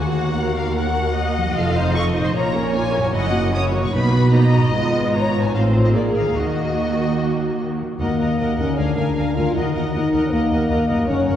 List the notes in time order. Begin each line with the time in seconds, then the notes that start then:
Already playing: D#2 D#3 A#3 F#4 A#4 F#5
0.37 A#4
0.57 F5
0.77 F#5
1.16 D#5
1.37 F3
1.42 A3
1.46 D#4
1.51 F4
1.55 F1 F2 F4 A4 F5
1.75 D#4 C5
1.94 F4 A4 C#6
2.16 A#2 D#4 C5
2.22 A#3 C6
2.27 C#4
2.31 A#3 F4 A#5
2.35 A#1 A#2 C#5
2.55 C#4 A#4
2.74 A#3 F4 G#5
2.94 F#2 C#4 A#4
3.01 A#3
3.05 E4
3.10 C#4 E4 F#4 F#5
3.15 F#1 F#2 D#5
3.33 A#3 F#4
3.53 C#4 E4 C#5 D#6
3.73 B2 A#3 F#4
3.81 B3 C#6
3.85 D#4
3.90 A#3 D#4 F#4 B5
3.95 B1 B2 B4
4.13 B3 F#4
4.33 A#3 D#4 D#5 A#5
4.53 G#2 B3 F#4
4.60 B3
4.65 D#4
4.69 F4
4.74 G#1 G#2 B3 F4 D#5
5.14 C#5 A#5
5.36 A2
5.41 C4 G#5
5.46 D#4
5.50 C4 F4 F5
5.55 A1 A2 C5
5.77 A#2
5.81 A#3
5.85 F4 D#5
5.90 G#4
5.95 A#1 A#2 A#3 G#4 A#4 D5
6.15 D#3 F5
6.24 A#3
6.28 D#4
6.33 D#2 A#3 F#4 D#5
6.37 D#3 F#4
7.83 D#3
7.87 A#3
7.91 D#4
7.96 F#4 F#5
8.00 D#2 A#3 A#4 D#5
8.20 D#2 A#4 D#5 F#5
8.39 D#2 A#4 D#5 F#5
8.59 D#2 D3 C#4 A#4 D#5 F#5
8.65 A#3
8.69 F4
8.74 D4 G#4
8.78 D2 A#4 F5 G#5
8.97 D2 A#4 F5 G#5
9.16 D2 A#4 F5 G#5
9.35 D2 D#3 F4 A#4 F5 G#5
9.42 A#3
9.46 D#4
9.51 D#2 F#4
9.55 D#2 D#4 A#4 D#5 F#5
9.75 D#2 A#4 D#5 F#5
9.94 D#2 D#4 A#4 D#5 F#5
10.13 D#2 A#4 D#5 F#5
10.31 D#2 A#3 A#4 D#5 F#5
10.51 D#2 A#4 D#5 F#5
10.69 D#2 A#4 D#5 F#5
10.89 D#2 F#2 A#4 D#5 F#5
10.95 A#3
11.00 C#4
11.04 C#4 F#4 C#5
11.08 F#1 F#2 A#4 F#5
11.26 F#1 F#2 A#4 C#5 F#5